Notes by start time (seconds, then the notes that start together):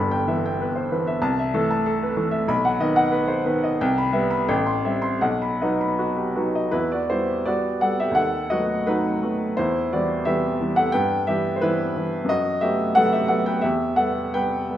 Already playing: G1 G2 B5
0.11 G5
0.27 E3 B3 E5
0.46 G5
0.61 B4
0.76 C5
0.92 E3 B3 B4
1.07 E5
1.22 C2 A5
1.39 E5
1.54 E3 A3 A4
1.71 A5
1.86 A4
2.03 B4
2.17 E3 A3 A4
2.31 E5
2.48 B1 B5
2.65 F#5
2.80 D#3 B3 D#5
2.96 F#5
3.12 B4
3.28 C5
3.46 D#3 B3 B4
3.64 D#5
3.81 C2 G5
3.98 B5
4.13 G3 B3 E5
4.31 B5
4.48 A1 G5
4.67 C6
4.85 G3 C4 E5
5.02 C6
5.21 B1 F#5
5.42 B5
5.62 F#3 B3 D#4 D#5
5.81 B5
5.99 F#4
6.17 G4
6.36 F#3 B3 D#4 F#4
6.55 D#5
6.71 E2 E4 B4
6.92 F#4 D5
7.10 G3 B3 E4 C5
7.46 G3 B3 F#4 D5
7.81 G3 B3 A4 F#5
8.00 G4 E5
8.11 D#2 F#5
8.16 A4
8.50 F#3 A3 B3 F#4 D#5
8.87 F#3 A3 B3 D#4 B4
9.23 F#3 A3 B3
9.57 E2 E4 C5
9.93 E3 G3 B3 F#4 D5
10.25 E3 G3 B3 G4 E5
10.61 E3 G3 B3
10.76 A4 F#5
10.92 G2 B4 G5
11.27 E3 G3 B3 G4 E5
11.56 C5
11.61 E3 G3 B3 E4 B4
11.97 E3 G3 B3
12.25 F#2
12.29 F#4 D#5
12.61 F#3 A3 B3 G4 E5
12.95 F#3 A3 B3 A4 F#5
13.12 G4 E5
13.28 F#3 A3 B3 A4 F#5
13.46 B4 G5
13.61 E2 G4 E5
13.96 G3 B3 A4 F#5
14.34 G3 B3 B4 G5
14.70 G3 B3